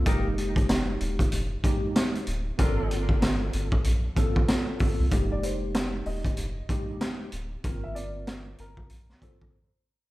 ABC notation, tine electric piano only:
X:1
M:4/4
L:1/8
Q:"Swing 16ths" 1/4=95
K:Fdor
V:1 name="Tine electric piano"
[A,B,EG]4 z [A,B,EG]2 z | [B,CF=A]4 z [B,CFA]2 [B,CFA] | [A,B,EG]4 z [A,B,EG]2 z | [B,CFB]4 z [B,CF=A] z2 |]